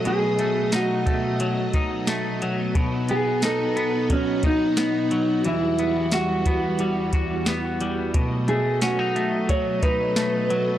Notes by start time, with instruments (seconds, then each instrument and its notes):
Already playing: string machine B2 F#3 A3 D#5, clean electric guitar F#3 A3 D#4
0.05 clean electric guitar B2 G#4, closed hi-hat
0.39 clean electric guitar A3, closed hi-hat
0.72 clean electric guitar D#4 F#4, snare, closed hi-hat
1.06 clean electric guitar A3, kick, closed hi-hat
1.40 clean electric guitar F#3, closed hi-hat
1.73 clean electric guitar D#4, kick, closed hi-hat
2.07 clean electric guitar A3, snare, closed hi-hat
2.42 clean electric guitar F#3, closed hi-hat
2.75 clean electric guitar B2, string machine B3 D#4 F#4, kick, closed hi-hat
3.09 clean electric guitar B3 G#4, closed hi-hat
3.42 clean electric guitar D#4 A4, snare, closed hi-hat
3.76 clean electric guitar B3, closed hi-hat
4.10 clean electric guitar F#3 C#4, kick, closed hi-hat
4.43 clean electric guitar D#4, kick, closed hi-hat
4.77 clean electric guitar B3, snare, closed hi-hat
5.11 clean electric guitar F#3, closed hi-hat
5.44 string machine E2 E3 G3, clean electric guitar E3 E4, closed hi-hat
5.79 clean electric guitar B3, closed hi-hat
6.12 clean electric guitar F#4, snare, closed hi-hat
6.46 clean electric guitar B3, kick, closed hi-hat
6.79 clean electric guitar G3, closed hi-hat
7.13 clean electric guitar F#4, kick, closed hi-hat
7.46 clean electric guitar B3, snare, closed hi-hat
7.81 clean electric guitar G3, closed hi-hat
8.14 clean electric guitar B2, string machine B2 F#3 A3 D#5, kick, closed hi-hat
8.48 clean electric guitar A3 G#4, closed hi-hat
8.81 clean electric guitar C#4 F#4, snare, closed hi-hat
8.99 clean electric guitar D#4
9.16 clean electric guitar A3, closed hi-hat
9.49 clean electric guitar F#3 C#5, kick, closed hi-hat
9.83 clean electric guitar D#4 B4, kick, closed hi-hat
10.16 clean electric guitar A3, snare, closed hi-hat
10.50 clean electric guitar F#3, closed hi-hat